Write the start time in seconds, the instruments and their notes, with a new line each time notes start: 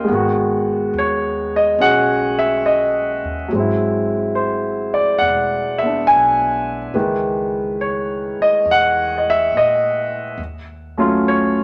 Already playing: grand piano F4 G4
0.04 grand piano G#3 B3
0.08 upright bass G#1, grand piano D#3
0.15 grand piano F#4
0.93 upright bass D#2
0.98 grand piano C#5
1.56 grand piano D#5
1.78 upright bass B1, grand piano C#4 F#4 G#4 F#5
2.39 grand piano E5
2.66 grand piano D#5
3.24 upright bass D#2
3.48 upright bass G#1, grand piano F#3 G#3
3.55 grand piano C4
3.60 grand piano E4
4.35 grand piano C5
4.94 grand piano D5
5.19 upright bass E1, grand piano F#5
5.78 grand piano B3 E5
5.86 grand piano D4
6.07 upright bass B1, grand piano G#5
6.94 upright bass C#2, grand piano D#3 E3 G#3 B4
7.81 grand piano C#5
8.39 grand piano D#5, muted upright bass stroke
8.65 upright bass E2
8.71 grand piano F#5
9.18 grand piano D#5
9.30 grand piano E5
9.52 upright bass A#2
9.57 grand piano D#5
10.38 upright bass D#2
10.98 grand piano F#3 A3 C#4 F4
11.28 grand piano C#5